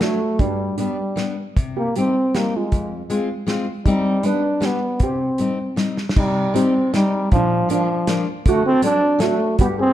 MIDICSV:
0, 0, Header, 1, 5, 480
1, 0, Start_track
1, 0, Key_signature, -3, "minor"
1, 0, Tempo, 389358
1, 477, Time_signature, 3, 2, 24, 8
1, 2884, Tempo, 381679
1, 12430, End_track
2, 0, Start_track
2, 0, Title_t, "Steel pan"
2, 0, Program_c, 0, 114
2, 30, Note_on_c, 0, 66, 67
2, 490, Note_off_c, 0, 66, 0
2, 495, Note_on_c, 0, 62, 76
2, 939, Note_off_c, 0, 62, 0
2, 954, Note_on_c, 0, 62, 60
2, 1638, Note_off_c, 0, 62, 0
2, 2178, Note_on_c, 0, 67, 70
2, 2394, Note_off_c, 0, 67, 0
2, 2417, Note_on_c, 0, 67, 74
2, 2857, Note_off_c, 0, 67, 0
2, 2909, Note_on_c, 0, 67, 63
2, 3143, Note_off_c, 0, 67, 0
2, 3165, Note_on_c, 0, 65, 56
2, 3627, Note_off_c, 0, 65, 0
2, 4788, Note_on_c, 0, 63, 76
2, 5232, Note_off_c, 0, 63, 0
2, 5299, Note_on_c, 0, 71, 76
2, 5762, Note_off_c, 0, 71, 0
2, 5767, Note_on_c, 0, 67, 70
2, 6238, Note_off_c, 0, 67, 0
2, 6271, Note_on_c, 0, 67, 75
2, 7229, Note_off_c, 0, 67, 0
2, 7694, Note_on_c, 0, 63, 77
2, 8145, Note_off_c, 0, 63, 0
2, 8185, Note_on_c, 0, 67, 83
2, 8667, Note_off_c, 0, 67, 0
2, 8683, Note_on_c, 0, 63, 71
2, 9119, Note_off_c, 0, 63, 0
2, 9193, Note_on_c, 0, 62, 81
2, 9614, Note_off_c, 0, 62, 0
2, 9645, Note_on_c, 0, 62, 77
2, 10303, Note_off_c, 0, 62, 0
2, 10614, Note_on_c, 0, 66, 105
2, 10820, Note_off_c, 0, 66, 0
2, 10867, Note_on_c, 0, 69, 89
2, 11057, Note_off_c, 0, 69, 0
2, 11071, Note_on_c, 0, 69, 81
2, 11499, Note_off_c, 0, 69, 0
2, 11544, Note_on_c, 0, 66, 82
2, 12011, Note_off_c, 0, 66, 0
2, 12025, Note_on_c, 0, 67, 97
2, 12131, Note_off_c, 0, 67, 0
2, 12252, Note_on_c, 0, 68, 77
2, 12430, Note_off_c, 0, 68, 0
2, 12430, End_track
3, 0, Start_track
3, 0, Title_t, "Steel-string acoustic guitar"
3, 0, Program_c, 1, 25
3, 8, Note_on_c, 1, 54, 67
3, 13, Note_on_c, 1, 57, 60
3, 26, Note_on_c, 1, 62, 79
3, 224, Note_off_c, 1, 54, 0
3, 227, Note_off_c, 1, 57, 0
3, 233, Note_off_c, 1, 62, 0
3, 498, Note_on_c, 1, 43, 57
3, 844, Note_off_c, 1, 43, 0
3, 959, Note_on_c, 1, 55, 60
3, 970, Note_on_c, 1, 59, 60
3, 982, Note_on_c, 1, 62, 66
3, 1178, Note_off_c, 1, 55, 0
3, 1183, Note_off_c, 1, 59, 0
3, 1189, Note_off_c, 1, 62, 0
3, 1426, Note_on_c, 1, 55, 62
3, 1437, Note_on_c, 1, 59, 53
3, 1451, Note_on_c, 1, 62, 64
3, 1657, Note_off_c, 1, 55, 0
3, 1662, Note_off_c, 1, 59, 0
3, 1669, Note_off_c, 1, 62, 0
3, 1935, Note_on_c, 1, 48, 71
3, 2290, Note_off_c, 1, 48, 0
3, 2420, Note_on_c, 1, 55, 63
3, 2441, Note_on_c, 1, 60, 54
3, 2451, Note_on_c, 1, 63, 65
3, 2635, Note_off_c, 1, 55, 0
3, 2646, Note_off_c, 1, 60, 0
3, 2651, Note_off_c, 1, 63, 0
3, 2894, Note_on_c, 1, 55, 62
3, 2902, Note_on_c, 1, 60, 52
3, 2909, Note_on_c, 1, 63, 68
3, 3111, Note_off_c, 1, 55, 0
3, 3116, Note_off_c, 1, 60, 0
3, 3116, Note_off_c, 1, 63, 0
3, 3369, Note_on_c, 1, 41, 61
3, 3724, Note_off_c, 1, 41, 0
3, 3837, Note_on_c, 1, 56, 75
3, 3847, Note_on_c, 1, 60, 68
3, 3853, Note_on_c, 1, 65, 80
3, 4058, Note_off_c, 1, 56, 0
3, 4064, Note_off_c, 1, 60, 0
3, 4067, Note_off_c, 1, 65, 0
3, 4300, Note_on_c, 1, 56, 75
3, 4310, Note_on_c, 1, 60, 69
3, 4329, Note_on_c, 1, 65, 86
3, 4528, Note_off_c, 1, 56, 0
3, 4531, Note_off_c, 1, 60, 0
3, 4542, Note_off_c, 1, 65, 0
3, 4800, Note_on_c, 1, 55, 69
3, 4816, Note_on_c, 1, 60, 65
3, 4822, Note_on_c, 1, 63, 85
3, 5178, Note_off_c, 1, 55, 0
3, 5186, Note_off_c, 1, 60, 0
3, 5189, Note_off_c, 1, 63, 0
3, 5267, Note_on_c, 1, 55, 67
3, 5275, Note_on_c, 1, 59, 58
3, 5294, Note_on_c, 1, 62, 76
3, 5487, Note_off_c, 1, 55, 0
3, 5491, Note_off_c, 1, 59, 0
3, 5500, Note_off_c, 1, 62, 0
3, 5731, Note_on_c, 1, 55, 64
3, 5735, Note_on_c, 1, 59, 59
3, 5752, Note_on_c, 1, 62, 63
3, 5961, Note_off_c, 1, 55, 0
3, 5962, Note_off_c, 1, 59, 0
3, 5971, Note_off_c, 1, 62, 0
3, 6222, Note_on_c, 1, 48, 59
3, 6589, Note_off_c, 1, 48, 0
3, 6723, Note_on_c, 1, 55, 59
3, 6738, Note_on_c, 1, 60, 54
3, 6749, Note_on_c, 1, 63, 61
3, 6946, Note_off_c, 1, 55, 0
3, 6953, Note_off_c, 1, 60, 0
3, 6959, Note_off_c, 1, 63, 0
3, 7190, Note_on_c, 1, 55, 63
3, 7204, Note_on_c, 1, 60, 55
3, 7211, Note_on_c, 1, 63, 81
3, 7425, Note_off_c, 1, 55, 0
3, 7432, Note_off_c, 1, 60, 0
3, 7434, Note_off_c, 1, 63, 0
3, 7696, Note_on_c, 1, 48, 66
3, 8058, Note_off_c, 1, 48, 0
3, 8163, Note_on_c, 1, 55, 71
3, 8175, Note_on_c, 1, 60, 59
3, 8187, Note_on_c, 1, 63, 75
3, 8396, Note_off_c, 1, 55, 0
3, 8401, Note_off_c, 1, 60, 0
3, 8407, Note_off_c, 1, 63, 0
3, 8663, Note_on_c, 1, 55, 75
3, 8663, Note_on_c, 1, 60, 63
3, 8681, Note_on_c, 1, 63, 72
3, 8884, Note_off_c, 1, 60, 0
3, 8886, Note_off_c, 1, 55, 0
3, 8894, Note_off_c, 1, 63, 0
3, 9151, Note_on_c, 1, 46, 70
3, 9504, Note_off_c, 1, 46, 0
3, 9611, Note_on_c, 1, 53, 66
3, 9622, Note_on_c, 1, 58, 61
3, 9634, Note_on_c, 1, 62, 82
3, 9836, Note_off_c, 1, 53, 0
3, 9842, Note_off_c, 1, 58, 0
3, 9848, Note_off_c, 1, 62, 0
3, 10098, Note_on_c, 1, 53, 69
3, 10114, Note_on_c, 1, 58, 66
3, 10120, Note_on_c, 1, 62, 70
3, 10317, Note_off_c, 1, 53, 0
3, 10325, Note_off_c, 1, 58, 0
3, 10328, Note_off_c, 1, 62, 0
3, 10577, Note_on_c, 1, 50, 69
3, 10929, Note_off_c, 1, 50, 0
3, 11034, Note_on_c, 1, 54, 67
3, 11052, Note_on_c, 1, 57, 63
3, 11058, Note_on_c, 1, 62, 77
3, 11257, Note_off_c, 1, 54, 0
3, 11266, Note_off_c, 1, 57, 0
3, 11268, Note_off_c, 1, 62, 0
3, 11495, Note_on_c, 1, 54, 72
3, 11510, Note_on_c, 1, 57, 73
3, 11533, Note_on_c, 1, 62, 73
3, 11728, Note_off_c, 1, 54, 0
3, 11736, Note_off_c, 1, 57, 0
3, 11747, Note_off_c, 1, 62, 0
3, 12012, Note_on_c, 1, 43, 75
3, 12367, Note_off_c, 1, 43, 0
3, 12430, End_track
4, 0, Start_track
4, 0, Title_t, "Euphonium"
4, 0, Program_c, 2, 58
4, 25, Note_on_c, 2, 57, 109
4, 498, Note_on_c, 2, 55, 90
4, 517, Note_off_c, 2, 57, 0
4, 963, Note_off_c, 2, 55, 0
4, 980, Note_on_c, 2, 55, 82
4, 1651, Note_off_c, 2, 55, 0
4, 2193, Note_on_c, 2, 58, 99
4, 2402, Note_off_c, 2, 58, 0
4, 2440, Note_on_c, 2, 60, 105
4, 2911, Note_on_c, 2, 58, 92
4, 2930, Note_off_c, 2, 60, 0
4, 3171, Note_on_c, 2, 56, 78
4, 3189, Note_off_c, 2, 58, 0
4, 3630, Note_off_c, 2, 56, 0
4, 4796, Note_on_c, 2, 55, 108
4, 5300, Note_on_c, 2, 62, 111
4, 5319, Note_off_c, 2, 55, 0
4, 5796, Note_on_c, 2, 59, 95
4, 5815, Note_off_c, 2, 62, 0
4, 6269, Note_on_c, 2, 60, 89
4, 6288, Note_off_c, 2, 59, 0
4, 7228, Note_off_c, 2, 60, 0
4, 7720, Note_on_c, 2, 55, 104
4, 8180, Note_on_c, 2, 60, 102
4, 8199, Note_off_c, 2, 55, 0
4, 8664, Note_off_c, 2, 60, 0
4, 8684, Note_on_c, 2, 55, 98
4, 9119, Note_off_c, 2, 55, 0
4, 9147, Note_on_c, 2, 53, 119
4, 9589, Note_off_c, 2, 53, 0
4, 9651, Note_on_c, 2, 53, 109
4, 10307, Note_off_c, 2, 53, 0
4, 10589, Note_on_c, 2, 57, 110
4, 10807, Note_off_c, 2, 57, 0
4, 10837, Note_on_c, 2, 60, 127
4, 11040, Note_off_c, 2, 60, 0
4, 11069, Note_on_c, 2, 62, 122
4, 11527, Note_on_c, 2, 57, 102
4, 11546, Note_off_c, 2, 62, 0
4, 11996, Note_off_c, 2, 57, 0
4, 12004, Note_on_c, 2, 59, 98
4, 12114, Note_off_c, 2, 59, 0
4, 12275, Note_on_c, 2, 60, 124
4, 12430, Note_off_c, 2, 60, 0
4, 12430, End_track
5, 0, Start_track
5, 0, Title_t, "Drums"
5, 9, Note_on_c, 9, 38, 63
5, 9, Note_on_c, 9, 42, 47
5, 132, Note_off_c, 9, 38, 0
5, 132, Note_off_c, 9, 42, 0
5, 484, Note_on_c, 9, 36, 67
5, 484, Note_on_c, 9, 42, 32
5, 607, Note_off_c, 9, 42, 0
5, 608, Note_off_c, 9, 36, 0
5, 959, Note_on_c, 9, 42, 44
5, 1082, Note_off_c, 9, 42, 0
5, 1443, Note_on_c, 9, 38, 56
5, 1443, Note_on_c, 9, 42, 37
5, 1567, Note_off_c, 9, 38, 0
5, 1567, Note_off_c, 9, 42, 0
5, 1930, Note_on_c, 9, 36, 72
5, 1931, Note_on_c, 9, 42, 39
5, 2053, Note_off_c, 9, 36, 0
5, 2054, Note_off_c, 9, 42, 0
5, 2411, Note_on_c, 9, 42, 44
5, 2534, Note_off_c, 9, 42, 0
5, 2892, Note_on_c, 9, 38, 62
5, 2892, Note_on_c, 9, 42, 42
5, 3018, Note_off_c, 9, 38, 0
5, 3018, Note_off_c, 9, 42, 0
5, 3362, Note_on_c, 9, 42, 41
5, 3366, Note_on_c, 9, 36, 64
5, 3488, Note_off_c, 9, 42, 0
5, 3491, Note_off_c, 9, 36, 0
5, 3843, Note_on_c, 9, 42, 47
5, 3969, Note_off_c, 9, 42, 0
5, 4314, Note_on_c, 9, 38, 58
5, 4314, Note_on_c, 9, 42, 41
5, 4440, Note_off_c, 9, 38, 0
5, 4440, Note_off_c, 9, 42, 0
5, 4791, Note_on_c, 9, 36, 71
5, 4793, Note_on_c, 9, 42, 38
5, 4917, Note_off_c, 9, 36, 0
5, 4919, Note_off_c, 9, 42, 0
5, 5266, Note_on_c, 9, 42, 42
5, 5392, Note_off_c, 9, 42, 0
5, 5748, Note_on_c, 9, 38, 57
5, 5748, Note_on_c, 9, 42, 41
5, 5874, Note_off_c, 9, 38, 0
5, 5874, Note_off_c, 9, 42, 0
5, 6225, Note_on_c, 9, 42, 43
5, 6231, Note_on_c, 9, 36, 66
5, 6351, Note_off_c, 9, 42, 0
5, 6357, Note_off_c, 9, 36, 0
5, 6711, Note_on_c, 9, 42, 42
5, 6836, Note_off_c, 9, 42, 0
5, 7202, Note_on_c, 9, 38, 61
5, 7202, Note_on_c, 9, 42, 43
5, 7328, Note_off_c, 9, 38, 0
5, 7328, Note_off_c, 9, 42, 0
5, 7455, Note_on_c, 9, 38, 42
5, 7580, Note_off_c, 9, 38, 0
5, 7606, Note_on_c, 9, 38, 66
5, 7693, Note_on_c, 9, 49, 67
5, 7694, Note_on_c, 9, 36, 79
5, 7731, Note_off_c, 9, 38, 0
5, 7819, Note_off_c, 9, 49, 0
5, 7820, Note_off_c, 9, 36, 0
5, 8188, Note_on_c, 9, 42, 52
5, 8313, Note_off_c, 9, 42, 0
5, 8666, Note_on_c, 9, 38, 67
5, 8666, Note_on_c, 9, 42, 47
5, 8792, Note_off_c, 9, 38, 0
5, 8792, Note_off_c, 9, 42, 0
5, 9142, Note_on_c, 9, 42, 38
5, 9146, Note_on_c, 9, 36, 83
5, 9267, Note_off_c, 9, 42, 0
5, 9272, Note_off_c, 9, 36, 0
5, 9623, Note_on_c, 9, 42, 52
5, 9749, Note_off_c, 9, 42, 0
5, 10096, Note_on_c, 9, 38, 73
5, 10096, Note_on_c, 9, 42, 52
5, 10222, Note_off_c, 9, 38, 0
5, 10222, Note_off_c, 9, 42, 0
5, 10577, Note_on_c, 9, 42, 46
5, 10578, Note_on_c, 9, 36, 77
5, 10703, Note_off_c, 9, 42, 0
5, 10704, Note_off_c, 9, 36, 0
5, 11040, Note_on_c, 9, 42, 57
5, 11166, Note_off_c, 9, 42, 0
5, 11512, Note_on_c, 9, 38, 70
5, 11512, Note_on_c, 9, 42, 55
5, 11638, Note_off_c, 9, 38, 0
5, 11638, Note_off_c, 9, 42, 0
5, 11997, Note_on_c, 9, 42, 50
5, 12001, Note_on_c, 9, 36, 78
5, 12123, Note_off_c, 9, 42, 0
5, 12127, Note_off_c, 9, 36, 0
5, 12430, End_track
0, 0, End_of_file